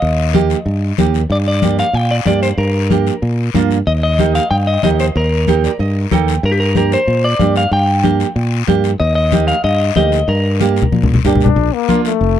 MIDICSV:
0, 0, Header, 1, 6, 480
1, 0, Start_track
1, 0, Key_signature, -2, "minor"
1, 0, Tempo, 320856
1, 27, Time_signature, 4, 2, 24, 8
1, 18544, End_track
2, 0, Start_track
2, 0, Title_t, "Clean electric guitar"
2, 0, Program_c, 0, 27
2, 0, Note_on_c, 0, 75, 75
2, 1413, Note_off_c, 0, 75, 0
2, 1974, Note_on_c, 0, 74, 95
2, 2049, Note_off_c, 0, 74, 0
2, 2211, Note_on_c, 0, 74, 89
2, 2646, Note_off_c, 0, 74, 0
2, 2685, Note_on_c, 0, 77, 96
2, 2918, Note_off_c, 0, 77, 0
2, 2918, Note_on_c, 0, 79, 101
2, 3153, Note_off_c, 0, 79, 0
2, 3159, Note_on_c, 0, 74, 92
2, 3233, Note_off_c, 0, 74, 0
2, 3400, Note_on_c, 0, 74, 89
2, 3618, Note_off_c, 0, 74, 0
2, 3630, Note_on_c, 0, 72, 81
2, 3705, Note_off_c, 0, 72, 0
2, 3865, Note_on_c, 0, 70, 79
2, 5247, Note_off_c, 0, 70, 0
2, 5789, Note_on_c, 0, 75, 97
2, 5864, Note_off_c, 0, 75, 0
2, 6034, Note_on_c, 0, 75, 91
2, 6478, Note_off_c, 0, 75, 0
2, 6511, Note_on_c, 0, 77, 95
2, 6734, Note_off_c, 0, 77, 0
2, 6740, Note_on_c, 0, 79, 95
2, 6815, Note_off_c, 0, 79, 0
2, 6989, Note_on_c, 0, 75, 88
2, 7217, Note_off_c, 0, 75, 0
2, 7234, Note_on_c, 0, 75, 92
2, 7309, Note_off_c, 0, 75, 0
2, 7483, Note_on_c, 0, 72, 81
2, 7558, Note_off_c, 0, 72, 0
2, 7732, Note_on_c, 0, 70, 86
2, 9100, Note_off_c, 0, 70, 0
2, 9656, Note_on_c, 0, 70, 85
2, 9740, Note_off_c, 0, 70, 0
2, 9746, Note_on_c, 0, 67, 76
2, 9844, Note_off_c, 0, 67, 0
2, 9871, Note_on_c, 0, 70, 88
2, 10106, Note_off_c, 0, 70, 0
2, 10134, Note_on_c, 0, 70, 78
2, 10367, Note_off_c, 0, 70, 0
2, 10375, Note_on_c, 0, 72, 90
2, 10837, Note_on_c, 0, 74, 91
2, 10855, Note_off_c, 0, 72, 0
2, 11323, Note_off_c, 0, 74, 0
2, 11329, Note_on_c, 0, 77, 86
2, 11555, Note_off_c, 0, 77, 0
2, 11561, Note_on_c, 0, 79, 101
2, 13173, Note_off_c, 0, 79, 0
2, 13458, Note_on_c, 0, 75, 92
2, 13676, Note_off_c, 0, 75, 0
2, 13694, Note_on_c, 0, 75, 88
2, 14171, Note_off_c, 0, 75, 0
2, 14177, Note_on_c, 0, 77, 86
2, 14420, Note_off_c, 0, 77, 0
2, 14426, Note_on_c, 0, 75, 87
2, 14872, Note_off_c, 0, 75, 0
2, 14908, Note_on_c, 0, 75, 92
2, 15390, Note_on_c, 0, 70, 78
2, 15400, Note_off_c, 0, 75, 0
2, 16767, Note_off_c, 0, 70, 0
2, 18544, End_track
3, 0, Start_track
3, 0, Title_t, "Nylon-string guitar"
3, 0, Program_c, 1, 24
3, 501, Note_on_c, 1, 58, 81
3, 510, Note_on_c, 1, 63, 68
3, 517, Note_on_c, 1, 67, 90
3, 841, Note_off_c, 1, 58, 0
3, 843, Note_off_c, 1, 63, 0
3, 848, Note_off_c, 1, 67, 0
3, 1466, Note_on_c, 1, 58, 75
3, 1472, Note_on_c, 1, 63, 73
3, 1475, Note_on_c, 1, 67, 81
3, 1803, Note_off_c, 1, 58, 0
3, 1806, Note_off_c, 1, 63, 0
3, 1806, Note_off_c, 1, 67, 0
3, 2425, Note_on_c, 1, 58, 68
3, 2430, Note_on_c, 1, 62, 63
3, 2439, Note_on_c, 1, 67, 71
3, 2763, Note_off_c, 1, 58, 0
3, 2764, Note_off_c, 1, 62, 0
3, 2766, Note_off_c, 1, 67, 0
3, 3385, Note_on_c, 1, 58, 65
3, 3394, Note_on_c, 1, 62, 57
3, 3397, Note_on_c, 1, 67, 72
3, 3723, Note_off_c, 1, 58, 0
3, 3725, Note_off_c, 1, 62, 0
3, 3728, Note_off_c, 1, 67, 0
3, 4337, Note_on_c, 1, 58, 69
3, 4348, Note_on_c, 1, 62, 61
3, 4354, Note_on_c, 1, 67, 73
3, 4679, Note_off_c, 1, 58, 0
3, 4682, Note_off_c, 1, 62, 0
3, 4687, Note_off_c, 1, 67, 0
3, 5300, Note_on_c, 1, 58, 75
3, 5312, Note_on_c, 1, 62, 74
3, 5313, Note_on_c, 1, 65, 81
3, 5641, Note_off_c, 1, 58, 0
3, 5643, Note_off_c, 1, 62, 0
3, 5646, Note_off_c, 1, 65, 0
3, 6265, Note_on_c, 1, 58, 66
3, 6273, Note_on_c, 1, 67, 71
3, 6274, Note_on_c, 1, 63, 65
3, 6603, Note_off_c, 1, 58, 0
3, 6606, Note_off_c, 1, 63, 0
3, 6606, Note_off_c, 1, 67, 0
3, 7230, Note_on_c, 1, 58, 67
3, 7239, Note_on_c, 1, 63, 63
3, 7247, Note_on_c, 1, 67, 79
3, 7565, Note_off_c, 1, 58, 0
3, 7568, Note_off_c, 1, 63, 0
3, 7574, Note_off_c, 1, 67, 0
3, 8187, Note_on_c, 1, 58, 68
3, 8196, Note_on_c, 1, 63, 63
3, 8200, Note_on_c, 1, 67, 75
3, 8436, Note_on_c, 1, 74, 67
3, 8523, Note_off_c, 1, 58, 0
3, 8525, Note_off_c, 1, 63, 0
3, 8530, Note_off_c, 1, 67, 0
3, 8655, Note_off_c, 1, 74, 0
3, 8675, Note_on_c, 1, 75, 63
3, 9118, Note_off_c, 1, 75, 0
3, 9142, Note_on_c, 1, 58, 79
3, 9146, Note_on_c, 1, 63, 66
3, 9155, Note_on_c, 1, 69, 84
3, 9162, Note_on_c, 1, 79, 64
3, 9481, Note_off_c, 1, 58, 0
3, 9484, Note_off_c, 1, 63, 0
3, 9486, Note_off_c, 1, 69, 0
3, 9596, Note_off_c, 1, 79, 0
3, 10097, Note_on_c, 1, 58, 62
3, 10105, Note_on_c, 1, 62, 64
3, 10108, Note_on_c, 1, 67, 70
3, 10438, Note_off_c, 1, 58, 0
3, 10441, Note_off_c, 1, 62, 0
3, 10443, Note_off_c, 1, 67, 0
3, 11059, Note_on_c, 1, 58, 64
3, 11068, Note_on_c, 1, 62, 58
3, 11077, Note_on_c, 1, 67, 77
3, 11399, Note_off_c, 1, 58, 0
3, 11401, Note_off_c, 1, 62, 0
3, 11408, Note_off_c, 1, 67, 0
3, 12013, Note_on_c, 1, 58, 70
3, 12017, Note_on_c, 1, 62, 66
3, 12027, Note_on_c, 1, 67, 79
3, 12355, Note_off_c, 1, 62, 0
3, 12356, Note_off_c, 1, 58, 0
3, 12362, Note_off_c, 1, 67, 0
3, 12973, Note_on_c, 1, 58, 83
3, 12978, Note_on_c, 1, 62, 74
3, 12987, Note_on_c, 1, 67, 86
3, 13315, Note_off_c, 1, 58, 0
3, 13317, Note_off_c, 1, 62, 0
3, 13322, Note_off_c, 1, 67, 0
3, 13938, Note_on_c, 1, 58, 70
3, 13948, Note_on_c, 1, 63, 59
3, 13953, Note_on_c, 1, 67, 76
3, 14279, Note_off_c, 1, 58, 0
3, 14280, Note_off_c, 1, 63, 0
3, 14285, Note_off_c, 1, 67, 0
3, 14895, Note_on_c, 1, 58, 68
3, 14901, Note_on_c, 1, 63, 61
3, 14913, Note_on_c, 1, 67, 74
3, 15236, Note_off_c, 1, 58, 0
3, 15240, Note_off_c, 1, 63, 0
3, 15242, Note_off_c, 1, 67, 0
3, 15857, Note_on_c, 1, 58, 70
3, 15864, Note_on_c, 1, 62, 66
3, 15871, Note_on_c, 1, 67, 73
3, 16196, Note_off_c, 1, 58, 0
3, 16200, Note_off_c, 1, 62, 0
3, 16203, Note_off_c, 1, 67, 0
3, 16829, Note_on_c, 1, 58, 84
3, 16833, Note_on_c, 1, 62, 68
3, 16836, Note_on_c, 1, 67, 84
3, 17162, Note_off_c, 1, 58, 0
3, 17163, Note_off_c, 1, 62, 0
3, 17165, Note_off_c, 1, 67, 0
3, 17777, Note_on_c, 1, 58, 72
3, 17787, Note_on_c, 1, 65, 73
3, 17788, Note_on_c, 1, 62, 64
3, 18117, Note_off_c, 1, 58, 0
3, 18119, Note_off_c, 1, 62, 0
3, 18121, Note_off_c, 1, 65, 0
3, 18544, End_track
4, 0, Start_track
4, 0, Title_t, "Trombone"
4, 0, Program_c, 2, 57
4, 16841, Note_on_c, 2, 62, 91
4, 16945, Note_off_c, 2, 62, 0
4, 17082, Note_on_c, 2, 62, 99
4, 17557, Note_on_c, 2, 58, 95
4, 17579, Note_off_c, 2, 62, 0
4, 18020, Note_off_c, 2, 58, 0
4, 18029, Note_on_c, 2, 57, 93
4, 18544, Note_off_c, 2, 57, 0
4, 18544, End_track
5, 0, Start_track
5, 0, Title_t, "Fingered electric bass"
5, 0, Program_c, 3, 33
5, 35, Note_on_c, 3, 39, 97
5, 800, Note_off_c, 3, 39, 0
5, 982, Note_on_c, 3, 43, 80
5, 1368, Note_off_c, 3, 43, 0
5, 1474, Note_on_c, 3, 39, 84
5, 1855, Note_off_c, 3, 39, 0
5, 1940, Note_on_c, 3, 43, 95
5, 2711, Note_off_c, 3, 43, 0
5, 2893, Note_on_c, 3, 46, 80
5, 3283, Note_off_c, 3, 46, 0
5, 3373, Note_on_c, 3, 43, 80
5, 3763, Note_off_c, 3, 43, 0
5, 3853, Note_on_c, 3, 43, 99
5, 4627, Note_off_c, 3, 43, 0
5, 4821, Note_on_c, 3, 46, 82
5, 5208, Note_off_c, 3, 46, 0
5, 5303, Note_on_c, 3, 43, 88
5, 5689, Note_off_c, 3, 43, 0
5, 5787, Note_on_c, 3, 39, 99
5, 6555, Note_off_c, 3, 39, 0
5, 6740, Note_on_c, 3, 43, 87
5, 7127, Note_off_c, 3, 43, 0
5, 7234, Note_on_c, 3, 39, 86
5, 7616, Note_off_c, 3, 39, 0
5, 7712, Note_on_c, 3, 39, 101
5, 8478, Note_off_c, 3, 39, 0
5, 8666, Note_on_c, 3, 43, 81
5, 9051, Note_off_c, 3, 43, 0
5, 9146, Note_on_c, 3, 39, 78
5, 9530, Note_off_c, 3, 39, 0
5, 9623, Note_on_c, 3, 43, 103
5, 10392, Note_off_c, 3, 43, 0
5, 10583, Note_on_c, 3, 46, 85
5, 10968, Note_off_c, 3, 46, 0
5, 11060, Note_on_c, 3, 43, 90
5, 11446, Note_off_c, 3, 43, 0
5, 11540, Note_on_c, 3, 43, 107
5, 12310, Note_off_c, 3, 43, 0
5, 12501, Note_on_c, 3, 46, 85
5, 12887, Note_off_c, 3, 46, 0
5, 12986, Note_on_c, 3, 43, 91
5, 13369, Note_off_c, 3, 43, 0
5, 13467, Note_on_c, 3, 39, 105
5, 14234, Note_off_c, 3, 39, 0
5, 14421, Note_on_c, 3, 43, 85
5, 14806, Note_off_c, 3, 43, 0
5, 14899, Note_on_c, 3, 38, 84
5, 15285, Note_off_c, 3, 38, 0
5, 15375, Note_on_c, 3, 43, 105
5, 16147, Note_off_c, 3, 43, 0
5, 16340, Note_on_c, 3, 46, 76
5, 16725, Note_off_c, 3, 46, 0
5, 16823, Note_on_c, 3, 43, 81
5, 17207, Note_off_c, 3, 43, 0
5, 17296, Note_on_c, 3, 34, 105
5, 17491, Note_off_c, 3, 34, 0
5, 18260, Note_on_c, 3, 29, 82
5, 18544, Note_off_c, 3, 29, 0
5, 18544, End_track
6, 0, Start_track
6, 0, Title_t, "Drums"
6, 31, Note_on_c, 9, 74, 64
6, 37, Note_on_c, 9, 63, 32
6, 181, Note_off_c, 9, 74, 0
6, 187, Note_off_c, 9, 63, 0
6, 509, Note_on_c, 9, 73, 66
6, 516, Note_on_c, 9, 63, 74
6, 658, Note_off_c, 9, 73, 0
6, 666, Note_off_c, 9, 63, 0
6, 749, Note_on_c, 9, 73, 68
6, 899, Note_off_c, 9, 73, 0
6, 988, Note_on_c, 9, 74, 61
6, 995, Note_on_c, 9, 63, 31
6, 1137, Note_off_c, 9, 74, 0
6, 1145, Note_off_c, 9, 63, 0
6, 1469, Note_on_c, 9, 63, 76
6, 1472, Note_on_c, 9, 73, 65
6, 1619, Note_off_c, 9, 63, 0
6, 1622, Note_off_c, 9, 73, 0
6, 1711, Note_on_c, 9, 73, 67
6, 1860, Note_off_c, 9, 73, 0
6, 1951, Note_on_c, 9, 63, 33
6, 1953, Note_on_c, 9, 74, 67
6, 2101, Note_off_c, 9, 63, 0
6, 2102, Note_off_c, 9, 74, 0
6, 2425, Note_on_c, 9, 63, 74
6, 2432, Note_on_c, 9, 73, 64
6, 2575, Note_off_c, 9, 63, 0
6, 2582, Note_off_c, 9, 73, 0
6, 2673, Note_on_c, 9, 73, 61
6, 2822, Note_off_c, 9, 73, 0
6, 2905, Note_on_c, 9, 63, 32
6, 2910, Note_on_c, 9, 74, 64
6, 3055, Note_off_c, 9, 63, 0
6, 3059, Note_off_c, 9, 74, 0
6, 3383, Note_on_c, 9, 63, 74
6, 3387, Note_on_c, 9, 73, 66
6, 3533, Note_off_c, 9, 63, 0
6, 3537, Note_off_c, 9, 73, 0
6, 3631, Note_on_c, 9, 73, 66
6, 3781, Note_off_c, 9, 73, 0
6, 3863, Note_on_c, 9, 63, 30
6, 3865, Note_on_c, 9, 74, 65
6, 4013, Note_off_c, 9, 63, 0
6, 4014, Note_off_c, 9, 74, 0
6, 4343, Note_on_c, 9, 63, 74
6, 4349, Note_on_c, 9, 73, 68
6, 4493, Note_off_c, 9, 63, 0
6, 4498, Note_off_c, 9, 73, 0
6, 4587, Note_on_c, 9, 73, 62
6, 4737, Note_off_c, 9, 73, 0
6, 4820, Note_on_c, 9, 63, 31
6, 4828, Note_on_c, 9, 74, 62
6, 4970, Note_off_c, 9, 63, 0
6, 4977, Note_off_c, 9, 74, 0
6, 5301, Note_on_c, 9, 63, 81
6, 5314, Note_on_c, 9, 73, 67
6, 5450, Note_off_c, 9, 63, 0
6, 5464, Note_off_c, 9, 73, 0
6, 5546, Note_on_c, 9, 73, 70
6, 5695, Note_off_c, 9, 73, 0
6, 5789, Note_on_c, 9, 74, 61
6, 5790, Note_on_c, 9, 63, 31
6, 5938, Note_off_c, 9, 74, 0
6, 5939, Note_off_c, 9, 63, 0
6, 6266, Note_on_c, 9, 63, 73
6, 6266, Note_on_c, 9, 73, 67
6, 6415, Note_off_c, 9, 63, 0
6, 6415, Note_off_c, 9, 73, 0
6, 6507, Note_on_c, 9, 73, 67
6, 6657, Note_off_c, 9, 73, 0
6, 6745, Note_on_c, 9, 74, 61
6, 6751, Note_on_c, 9, 63, 34
6, 6895, Note_off_c, 9, 74, 0
6, 6901, Note_off_c, 9, 63, 0
6, 7225, Note_on_c, 9, 63, 74
6, 7230, Note_on_c, 9, 73, 65
6, 7375, Note_off_c, 9, 63, 0
6, 7380, Note_off_c, 9, 73, 0
6, 7472, Note_on_c, 9, 73, 65
6, 7621, Note_off_c, 9, 73, 0
6, 7715, Note_on_c, 9, 63, 30
6, 7716, Note_on_c, 9, 74, 61
6, 7865, Note_off_c, 9, 63, 0
6, 7865, Note_off_c, 9, 74, 0
6, 8185, Note_on_c, 9, 63, 69
6, 8196, Note_on_c, 9, 73, 67
6, 8335, Note_off_c, 9, 63, 0
6, 8346, Note_off_c, 9, 73, 0
6, 8440, Note_on_c, 9, 73, 63
6, 8590, Note_off_c, 9, 73, 0
6, 8664, Note_on_c, 9, 63, 31
6, 8681, Note_on_c, 9, 74, 60
6, 8813, Note_off_c, 9, 63, 0
6, 8830, Note_off_c, 9, 74, 0
6, 9147, Note_on_c, 9, 63, 77
6, 9153, Note_on_c, 9, 73, 61
6, 9296, Note_off_c, 9, 63, 0
6, 9303, Note_off_c, 9, 73, 0
6, 9398, Note_on_c, 9, 73, 70
6, 9547, Note_off_c, 9, 73, 0
6, 9632, Note_on_c, 9, 63, 32
6, 9634, Note_on_c, 9, 74, 62
6, 9781, Note_off_c, 9, 63, 0
6, 9783, Note_off_c, 9, 74, 0
6, 10098, Note_on_c, 9, 63, 68
6, 10110, Note_on_c, 9, 73, 67
6, 10248, Note_off_c, 9, 63, 0
6, 10260, Note_off_c, 9, 73, 0
6, 10351, Note_on_c, 9, 73, 62
6, 10501, Note_off_c, 9, 73, 0
6, 10583, Note_on_c, 9, 63, 29
6, 10593, Note_on_c, 9, 74, 67
6, 10733, Note_off_c, 9, 63, 0
6, 10742, Note_off_c, 9, 74, 0
6, 11064, Note_on_c, 9, 63, 73
6, 11068, Note_on_c, 9, 73, 66
6, 11213, Note_off_c, 9, 63, 0
6, 11218, Note_off_c, 9, 73, 0
6, 11306, Note_on_c, 9, 73, 68
6, 11455, Note_off_c, 9, 73, 0
6, 11546, Note_on_c, 9, 74, 64
6, 11549, Note_on_c, 9, 63, 33
6, 11696, Note_off_c, 9, 74, 0
6, 11699, Note_off_c, 9, 63, 0
6, 12023, Note_on_c, 9, 73, 64
6, 12024, Note_on_c, 9, 63, 67
6, 12172, Note_off_c, 9, 73, 0
6, 12174, Note_off_c, 9, 63, 0
6, 12267, Note_on_c, 9, 73, 65
6, 12417, Note_off_c, 9, 73, 0
6, 12504, Note_on_c, 9, 63, 31
6, 12510, Note_on_c, 9, 74, 65
6, 12654, Note_off_c, 9, 63, 0
6, 12660, Note_off_c, 9, 74, 0
6, 12985, Note_on_c, 9, 63, 74
6, 12987, Note_on_c, 9, 73, 67
6, 13135, Note_off_c, 9, 63, 0
6, 13137, Note_off_c, 9, 73, 0
6, 13224, Note_on_c, 9, 73, 64
6, 13373, Note_off_c, 9, 73, 0
6, 13459, Note_on_c, 9, 74, 63
6, 13467, Note_on_c, 9, 63, 32
6, 13608, Note_off_c, 9, 74, 0
6, 13617, Note_off_c, 9, 63, 0
6, 13942, Note_on_c, 9, 73, 69
6, 13949, Note_on_c, 9, 63, 73
6, 14091, Note_off_c, 9, 73, 0
6, 14099, Note_off_c, 9, 63, 0
6, 14181, Note_on_c, 9, 73, 59
6, 14330, Note_off_c, 9, 73, 0
6, 14421, Note_on_c, 9, 74, 64
6, 14423, Note_on_c, 9, 63, 30
6, 14571, Note_off_c, 9, 74, 0
6, 14573, Note_off_c, 9, 63, 0
6, 14897, Note_on_c, 9, 63, 73
6, 14904, Note_on_c, 9, 73, 62
6, 15047, Note_off_c, 9, 63, 0
6, 15053, Note_off_c, 9, 73, 0
6, 15143, Note_on_c, 9, 73, 65
6, 15293, Note_off_c, 9, 73, 0
6, 15382, Note_on_c, 9, 63, 32
6, 15384, Note_on_c, 9, 74, 62
6, 15532, Note_off_c, 9, 63, 0
6, 15534, Note_off_c, 9, 74, 0
6, 15867, Note_on_c, 9, 63, 57
6, 15868, Note_on_c, 9, 73, 68
6, 16017, Note_off_c, 9, 63, 0
6, 16017, Note_off_c, 9, 73, 0
6, 16104, Note_on_c, 9, 73, 65
6, 16190, Note_on_c, 9, 64, 68
6, 16253, Note_off_c, 9, 73, 0
6, 16339, Note_off_c, 9, 64, 0
6, 16343, Note_on_c, 9, 63, 74
6, 16348, Note_on_c, 9, 74, 65
6, 16493, Note_off_c, 9, 63, 0
6, 16497, Note_off_c, 9, 74, 0
6, 16505, Note_on_c, 9, 64, 99
6, 16655, Note_off_c, 9, 64, 0
6, 16664, Note_on_c, 9, 64, 84
6, 16814, Note_off_c, 9, 64, 0
6, 16822, Note_on_c, 9, 73, 66
6, 16825, Note_on_c, 9, 64, 72
6, 16972, Note_off_c, 9, 73, 0
6, 16975, Note_off_c, 9, 64, 0
6, 16986, Note_on_c, 9, 64, 79
6, 17063, Note_on_c, 9, 73, 67
6, 17136, Note_off_c, 9, 64, 0
6, 17144, Note_on_c, 9, 64, 96
6, 17213, Note_off_c, 9, 73, 0
6, 17293, Note_off_c, 9, 64, 0
6, 17305, Note_on_c, 9, 74, 63
6, 17306, Note_on_c, 9, 63, 33
6, 17455, Note_off_c, 9, 74, 0
6, 17456, Note_off_c, 9, 63, 0
6, 17783, Note_on_c, 9, 63, 77
6, 17788, Note_on_c, 9, 73, 68
6, 17932, Note_off_c, 9, 63, 0
6, 17938, Note_off_c, 9, 73, 0
6, 18026, Note_on_c, 9, 73, 67
6, 18175, Note_off_c, 9, 73, 0
6, 18265, Note_on_c, 9, 63, 32
6, 18272, Note_on_c, 9, 74, 63
6, 18414, Note_off_c, 9, 63, 0
6, 18422, Note_off_c, 9, 74, 0
6, 18544, End_track
0, 0, End_of_file